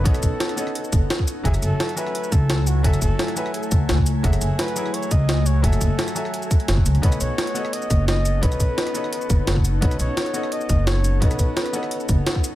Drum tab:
HH |xxx-xxx-x-x-x-x-|xxx-xxx-x-x-x-x-|xxx-xxx-x-x-x-x-|xxx-xxx-x-x-x-x-|
SH |-xx---x--xx---x-|-xx---x--xx---x-|-xx---x--xx---x-|-xx---x--xx---x-|
SD |-r--or-r----o---|-r--o--r----o---|-r--or-r----o---|-r--o--r----o---|
BD |o-o-------o--o--|o---------o-----|o-o-------o--o--|o---------o-----|

HH |xxx-xxx-x-xxx-xx|xxx-xxx-x-x-x-x-|xxx-xxx-x-x-x-x-|xxx-xxx-x-x-x-x-|
SH |-xx--xx--xx---x-|-xx---x--xx---x-|-xx---x--xx---x-|-xx---x--xx---x-|
SD |-r--or-r----o---|-r--o--r----o---|-r--or-r----o---|-r--o--r----o---|
BD |o-o-------o--o--|o---------o-----|o-o-------o--o--|o---------o-----|

HH |xxx-xxx-x-x-x-x-|
SH |-xx---x--xx---x-|
SD |-r--or-r----o---|
BD |o-o-------o--o--|